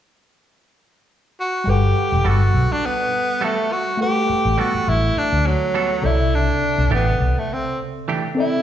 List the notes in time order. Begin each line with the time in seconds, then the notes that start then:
1.40 F#4
1.64 G1 G3 A4 F#5
1.70 G4 B4
2.12 E1
2.25 G1 G3 B3 F#4 A4
2.29 F#4
2.54 B1
2.72 D4
2.86 B3
3.41 G3 A3 B3 F#4 A4
3.72 F#4
3.97 A3 A4 F#5
4.02 G4 B4
4.30 muted fingered electric bass stroke
4.45 A1
4.58 G3 B3 F#4 A4
4.74 muted fingered electric bass stroke
4.88 A1 E4
5.17 D4, muted fingered electric bass stroke
5.33 D2
5.47 F#3
5.74 G3 B3 F#4 A4
6.02 C2 C3 A4 D5
6.06 E4 E5
6.35 D4
6.78 C2
6.91 A1 E3 A3 B3 D4 G4
7.20 C2
7.39 A3
7.53 C4
8.08 E3 A3 D4 G4
8.35 C4 A4 D5
8.40 E4 E5